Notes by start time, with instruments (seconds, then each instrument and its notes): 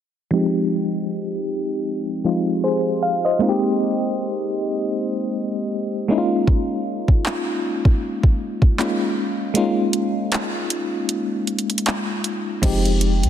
0.31 fm electric piano F3 G#3 C4 D#4 G4
2.24 fm electric piano F3 G#3 C4 D#4 F4
2.64 fm electric piano G#4 C5
3.02 fm electric piano F5
3.25 fm electric piano C5 D#5
3.39 fm electric piano G#3 A#3 C4 D#4 F4
3.49 fm electric piano G4
6.08 fm electric piano G#3 A#3 C#4 D#4 E4
6.18 fm electric piano F4
6.47 kick
7.08 kick
7.26 clap
7.85 kick
8.23 kick
8.62 kick
8.79 fm electric piano G#3 A#3 C#4 D#4 F4, clap
9.54 fm electric piano G#3 A#3 C#4 D#4 F4, closed hi-hat
9.93 closed hi-hat
10.32 clap, closed hi-hat
10.70 closed hi-hat
11.09 closed hi-hat
11.47 closed hi-hat
11.59 closed hi-hat
11.70 closed hi-hat
11.78 closed hi-hat
11.86 clap, closed hi-hat
12.24 closed hi-hat
12.62 808-style bass F1, fm electric piano F3 G#3 C4 D#4 G4, kick, closed hi-hat, crash
12.85 closed hi-hat
13.01 closed hi-hat
13.23 808-style bass F2, closed hi-hat